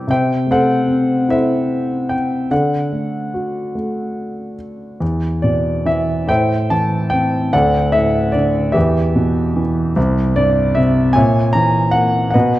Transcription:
Already playing: C3 G3 C4 E4 A4
0.08 C3 C5 E5 G5
0.47 A3
0.51 A4 C5 F#5
0.88 C4
1.28 E4 A4 C5 E5
2.09 G5
2.51 D3 A4 D5 F#5
2.92 A3
3.34 F#4
3.75 A3
5.00 E2
5.42 B2 D5
5.85 E3 E5
6.28 A2 C5 E5 G5
6.70 E3 A5
7.10 C4 G5
7.53 D2 A4 D5 F#5
7.92 A2 E5
8.32 D3 D5
8.72 E2 G4 B4 E5
9.16 B2
9.56 E3
9.96 C2
10.36 G2 D5
10.75 C3 E5
11.13 A#2 C#5 E5 G#5
11.53 E3 A#5
11.91 A#3 F#5
12.30 B4 D#5 F#5
12.35 B2

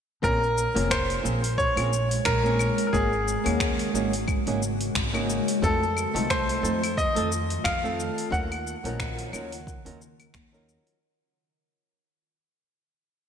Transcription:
0.22 A#1 G#3 A#3 C4 C#4 F4 G#4 A#4, kick, shaker
0.43 shaker
0.58 shaker
0.74 F1 A#3 C4 C#4 F4 G#4, open hi-hat, shaker
0.90 C5, finger snap, kick, claves, shaker
1.10 open hi-hat, shaker
1.22 A#1 A#3 C4 C#4 F4 G#4, shaker
1.44 open hi-hat, shaker
1.58 C#5, kick, shaker
1.75 A#1 A#3 C4 C#4 F4 G#4, open hi-hat, claves, shaker
1.93 shaker
2.11 open hi-hat, shaker
2.25 A#1 A#4, finger snap, kick, shaker
2.43 A#3 C4 C#4 F4 G#4, shaker
2.59 claves, shaker
2.78 open hi-hat, shaker
2.87 A#4
2.92 G#1 C#3 A#3 C#4 D#4 F#4 G#4, kick, shaker
3.13 shaker
3.28 shaker
3.44 D#2 A#3 C#4 D#4 F#4 G#4, open hi-hat, claves, shaker
3.60 finger snap, kick, shaker
3.79 open hi-hat, shaker
3.93 G#1 A#3 C#4 D#4 F#4 G#4, shaker
4.13 open hi-hat, shaker
4.28 kick, claves, shaker
4.46 G#1 A#3 C#4 D#4 F#4 G#4, open hi-hat, shaker
4.63 shaker
4.81 open hi-hat, shaker
4.95 G#1, finger snap, kick, shaker
5.13 A#3 C#4 D#4 F#4 G#4, claves, shaker
5.30 shaker
5.48 open hi-hat, shaker
5.62 F2 D#3 A3 C4 D#4 F4 A4, kick, shaker
5.83 shaker
5.97 claves, shaker
6.14 C2 A3 C4 D#4 F4 A4, open hi-hat, shaker
6.30 C5, finger snap, kick, shaker
6.49 open hi-hat, shaker
6.61 F2 A3 C4 D#4 F4 A4, shaker
6.83 open hi-hat, claves, shaker
6.97 D#5, kick, shaker
7.15 F2 A3 C4 D#4 F4 A4, open hi-hat, shaker
7.32 shaker
7.50 open hi-hat, shaker
7.64 F2 F5, finger snap, kick, claves, shaker
7.83 A3 C4 D#4 F4 A4, shaker
8.00 shaker
8.18 open hi-hat, shaker
8.30 D#2 C#3 D#3 F#3 C#4 D#4 F4 A#4 F#5, kick, shaker
8.52 open hi-hat, claves, shaker
8.67 shaker
8.84 A#1 F3 F#3 C#4 D#4 A#4, open hi-hat, shaker
9.00 finger snap, kick, shaker
9.19 open hi-hat, shaker
9.32 D#2 F#3 C#4 D#4 F4 A#4, claves, shaker
9.52 open hi-hat, shaker
9.67 kick, shaker
9.84 D#2 F#3 C#4 D#4 F4 A#4, open hi-hat, shaker
10.02 shaker
10.20 open hi-hat, claves, shaker
10.34 D#2, finger snap, kick, shaker
10.52 F#3 C#4 D#4 F4 A#4, shaker
10.69 shaker
10.87 open hi-hat, shaker

